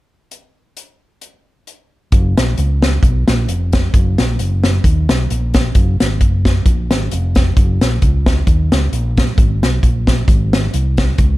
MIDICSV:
0, 0, Header, 1, 3, 480
1, 0, Start_track
1, 0, Key_signature, 6, "major"
1, 0, Tempo, 453172
1, 329, Time_signature, 4, 2, 24, 8
1, 12052, End_track
2, 0, Start_track
2, 0, Title_t, "Fingered electric bass"
2, 0, Program_c, 0, 33
2, 2250, Note_on_c, 0, 30, 93
2, 2475, Note_off_c, 0, 30, 0
2, 2517, Note_on_c, 0, 34, 81
2, 2698, Note_off_c, 0, 34, 0
2, 2734, Note_on_c, 0, 37, 79
2, 3140, Note_off_c, 0, 37, 0
2, 3208, Note_on_c, 0, 35, 87
2, 3434, Note_off_c, 0, 35, 0
2, 3475, Note_on_c, 0, 34, 93
2, 3657, Note_off_c, 0, 34, 0
2, 3692, Note_on_c, 0, 29, 81
2, 4099, Note_off_c, 0, 29, 0
2, 4172, Note_on_c, 0, 30, 98
2, 4397, Note_off_c, 0, 30, 0
2, 4438, Note_on_c, 0, 34, 84
2, 4619, Note_off_c, 0, 34, 0
2, 4655, Note_on_c, 0, 30, 84
2, 5061, Note_off_c, 0, 30, 0
2, 5128, Note_on_c, 0, 39, 99
2, 5355, Note_off_c, 0, 39, 0
2, 5400, Note_on_c, 0, 35, 87
2, 5581, Note_off_c, 0, 35, 0
2, 5619, Note_on_c, 0, 34, 76
2, 6024, Note_off_c, 0, 34, 0
2, 6093, Note_on_c, 0, 30, 91
2, 6317, Note_off_c, 0, 30, 0
2, 6371, Note_on_c, 0, 32, 81
2, 6577, Note_off_c, 0, 32, 0
2, 6577, Note_on_c, 0, 30, 85
2, 6982, Note_off_c, 0, 30, 0
2, 7053, Note_on_c, 0, 34, 88
2, 7331, Note_off_c, 0, 34, 0
2, 7331, Note_on_c, 0, 32, 77
2, 7507, Note_off_c, 0, 32, 0
2, 7542, Note_on_c, 0, 29, 75
2, 7945, Note_off_c, 0, 29, 0
2, 8016, Note_on_c, 0, 30, 96
2, 8240, Note_off_c, 0, 30, 0
2, 8279, Note_on_c, 0, 34, 79
2, 8460, Note_off_c, 0, 34, 0
2, 8499, Note_on_c, 0, 37, 80
2, 8903, Note_off_c, 0, 37, 0
2, 8972, Note_on_c, 0, 39, 96
2, 9197, Note_off_c, 0, 39, 0
2, 9239, Note_on_c, 0, 37, 89
2, 9420, Note_off_c, 0, 37, 0
2, 9448, Note_on_c, 0, 34, 82
2, 9857, Note_off_c, 0, 34, 0
2, 9935, Note_on_c, 0, 32, 97
2, 10159, Note_off_c, 0, 32, 0
2, 10190, Note_on_c, 0, 35, 82
2, 10375, Note_off_c, 0, 35, 0
2, 10413, Note_on_c, 0, 34, 79
2, 10820, Note_off_c, 0, 34, 0
2, 10887, Note_on_c, 0, 32, 97
2, 11296, Note_off_c, 0, 32, 0
2, 11375, Note_on_c, 0, 36, 83
2, 11780, Note_off_c, 0, 36, 0
2, 11848, Note_on_c, 0, 37, 100
2, 12052, Note_off_c, 0, 37, 0
2, 12052, End_track
3, 0, Start_track
3, 0, Title_t, "Drums"
3, 330, Note_on_c, 9, 42, 51
3, 436, Note_off_c, 9, 42, 0
3, 811, Note_on_c, 9, 42, 54
3, 917, Note_off_c, 9, 42, 0
3, 1286, Note_on_c, 9, 42, 51
3, 1392, Note_off_c, 9, 42, 0
3, 1771, Note_on_c, 9, 42, 52
3, 1877, Note_off_c, 9, 42, 0
3, 2246, Note_on_c, 9, 42, 88
3, 2249, Note_on_c, 9, 36, 105
3, 2352, Note_off_c, 9, 42, 0
3, 2355, Note_off_c, 9, 36, 0
3, 2515, Note_on_c, 9, 42, 65
3, 2516, Note_on_c, 9, 38, 101
3, 2621, Note_off_c, 9, 42, 0
3, 2622, Note_off_c, 9, 38, 0
3, 2727, Note_on_c, 9, 42, 80
3, 2833, Note_off_c, 9, 42, 0
3, 2992, Note_on_c, 9, 38, 100
3, 3001, Note_on_c, 9, 42, 72
3, 3098, Note_off_c, 9, 38, 0
3, 3107, Note_off_c, 9, 42, 0
3, 3206, Note_on_c, 9, 36, 96
3, 3213, Note_on_c, 9, 42, 82
3, 3312, Note_off_c, 9, 36, 0
3, 3319, Note_off_c, 9, 42, 0
3, 3470, Note_on_c, 9, 38, 100
3, 3471, Note_on_c, 9, 42, 66
3, 3576, Note_off_c, 9, 38, 0
3, 3577, Note_off_c, 9, 42, 0
3, 3692, Note_on_c, 9, 42, 91
3, 3798, Note_off_c, 9, 42, 0
3, 3946, Note_on_c, 9, 42, 56
3, 3954, Note_on_c, 9, 38, 108
3, 3955, Note_on_c, 9, 36, 84
3, 4051, Note_off_c, 9, 42, 0
3, 4060, Note_off_c, 9, 38, 0
3, 4061, Note_off_c, 9, 36, 0
3, 4171, Note_on_c, 9, 36, 110
3, 4173, Note_on_c, 9, 42, 82
3, 4277, Note_off_c, 9, 36, 0
3, 4278, Note_off_c, 9, 42, 0
3, 4431, Note_on_c, 9, 42, 66
3, 4432, Note_on_c, 9, 38, 105
3, 4537, Note_off_c, 9, 42, 0
3, 4538, Note_off_c, 9, 38, 0
3, 4651, Note_on_c, 9, 42, 81
3, 4756, Note_off_c, 9, 42, 0
3, 4910, Note_on_c, 9, 38, 103
3, 4919, Note_on_c, 9, 42, 73
3, 5016, Note_off_c, 9, 38, 0
3, 5025, Note_off_c, 9, 42, 0
3, 5128, Note_on_c, 9, 36, 98
3, 5131, Note_on_c, 9, 42, 86
3, 5234, Note_off_c, 9, 36, 0
3, 5237, Note_off_c, 9, 42, 0
3, 5393, Note_on_c, 9, 38, 108
3, 5394, Note_on_c, 9, 42, 64
3, 5499, Note_off_c, 9, 38, 0
3, 5500, Note_off_c, 9, 42, 0
3, 5617, Note_on_c, 9, 42, 87
3, 5723, Note_off_c, 9, 42, 0
3, 5864, Note_on_c, 9, 42, 58
3, 5873, Note_on_c, 9, 38, 99
3, 5876, Note_on_c, 9, 36, 91
3, 5970, Note_off_c, 9, 42, 0
3, 5979, Note_off_c, 9, 38, 0
3, 5982, Note_off_c, 9, 36, 0
3, 6087, Note_on_c, 9, 42, 91
3, 6092, Note_on_c, 9, 36, 101
3, 6193, Note_off_c, 9, 42, 0
3, 6198, Note_off_c, 9, 36, 0
3, 6359, Note_on_c, 9, 38, 95
3, 6359, Note_on_c, 9, 42, 69
3, 6465, Note_off_c, 9, 38, 0
3, 6465, Note_off_c, 9, 42, 0
3, 6575, Note_on_c, 9, 36, 77
3, 6575, Note_on_c, 9, 42, 83
3, 6681, Note_off_c, 9, 36, 0
3, 6681, Note_off_c, 9, 42, 0
3, 6834, Note_on_c, 9, 36, 79
3, 6835, Note_on_c, 9, 38, 113
3, 6844, Note_on_c, 9, 42, 70
3, 6940, Note_off_c, 9, 36, 0
3, 6941, Note_off_c, 9, 38, 0
3, 6950, Note_off_c, 9, 42, 0
3, 7051, Note_on_c, 9, 36, 97
3, 7052, Note_on_c, 9, 42, 90
3, 7157, Note_off_c, 9, 36, 0
3, 7158, Note_off_c, 9, 42, 0
3, 7315, Note_on_c, 9, 38, 107
3, 7316, Note_on_c, 9, 42, 65
3, 7421, Note_off_c, 9, 38, 0
3, 7422, Note_off_c, 9, 42, 0
3, 7535, Note_on_c, 9, 42, 88
3, 7640, Note_off_c, 9, 42, 0
3, 7786, Note_on_c, 9, 42, 55
3, 7794, Note_on_c, 9, 38, 100
3, 7800, Note_on_c, 9, 36, 89
3, 7892, Note_off_c, 9, 42, 0
3, 7900, Note_off_c, 9, 38, 0
3, 7906, Note_off_c, 9, 36, 0
3, 8014, Note_on_c, 9, 42, 83
3, 8016, Note_on_c, 9, 36, 106
3, 8120, Note_off_c, 9, 42, 0
3, 8122, Note_off_c, 9, 36, 0
3, 8276, Note_on_c, 9, 42, 64
3, 8277, Note_on_c, 9, 38, 97
3, 8382, Note_off_c, 9, 42, 0
3, 8383, Note_off_c, 9, 38, 0
3, 8494, Note_on_c, 9, 42, 76
3, 8497, Note_on_c, 9, 36, 77
3, 8600, Note_off_c, 9, 42, 0
3, 8603, Note_off_c, 9, 36, 0
3, 8753, Note_on_c, 9, 38, 109
3, 8755, Note_on_c, 9, 36, 82
3, 8761, Note_on_c, 9, 42, 71
3, 8859, Note_off_c, 9, 38, 0
3, 8860, Note_off_c, 9, 36, 0
3, 8867, Note_off_c, 9, 42, 0
3, 8972, Note_on_c, 9, 36, 91
3, 8972, Note_on_c, 9, 42, 78
3, 9078, Note_off_c, 9, 36, 0
3, 9078, Note_off_c, 9, 42, 0
3, 9237, Note_on_c, 9, 38, 107
3, 9238, Note_on_c, 9, 42, 62
3, 9343, Note_off_c, 9, 38, 0
3, 9344, Note_off_c, 9, 42, 0
3, 9457, Note_on_c, 9, 42, 86
3, 9563, Note_off_c, 9, 42, 0
3, 9716, Note_on_c, 9, 42, 58
3, 9719, Note_on_c, 9, 36, 88
3, 9724, Note_on_c, 9, 38, 105
3, 9822, Note_off_c, 9, 42, 0
3, 9825, Note_off_c, 9, 36, 0
3, 9830, Note_off_c, 9, 38, 0
3, 9933, Note_on_c, 9, 42, 84
3, 9934, Note_on_c, 9, 36, 108
3, 10039, Note_off_c, 9, 42, 0
3, 10040, Note_off_c, 9, 36, 0
3, 10201, Note_on_c, 9, 38, 93
3, 10201, Note_on_c, 9, 42, 65
3, 10306, Note_off_c, 9, 42, 0
3, 10307, Note_off_c, 9, 38, 0
3, 10412, Note_on_c, 9, 36, 81
3, 10415, Note_on_c, 9, 42, 82
3, 10518, Note_off_c, 9, 36, 0
3, 10521, Note_off_c, 9, 42, 0
3, 10670, Note_on_c, 9, 36, 83
3, 10670, Note_on_c, 9, 38, 98
3, 10679, Note_on_c, 9, 42, 76
3, 10775, Note_off_c, 9, 36, 0
3, 10776, Note_off_c, 9, 38, 0
3, 10785, Note_off_c, 9, 42, 0
3, 10887, Note_on_c, 9, 36, 96
3, 10894, Note_on_c, 9, 42, 84
3, 10993, Note_off_c, 9, 36, 0
3, 11000, Note_off_c, 9, 42, 0
3, 11156, Note_on_c, 9, 38, 106
3, 11157, Note_on_c, 9, 42, 64
3, 11262, Note_off_c, 9, 38, 0
3, 11263, Note_off_c, 9, 42, 0
3, 11371, Note_on_c, 9, 42, 89
3, 11477, Note_off_c, 9, 42, 0
3, 11622, Note_on_c, 9, 42, 51
3, 11631, Note_on_c, 9, 38, 105
3, 11632, Note_on_c, 9, 36, 81
3, 11728, Note_off_c, 9, 42, 0
3, 11737, Note_off_c, 9, 38, 0
3, 11738, Note_off_c, 9, 36, 0
3, 11842, Note_on_c, 9, 42, 86
3, 11847, Note_on_c, 9, 36, 101
3, 11948, Note_off_c, 9, 42, 0
3, 11953, Note_off_c, 9, 36, 0
3, 12052, End_track
0, 0, End_of_file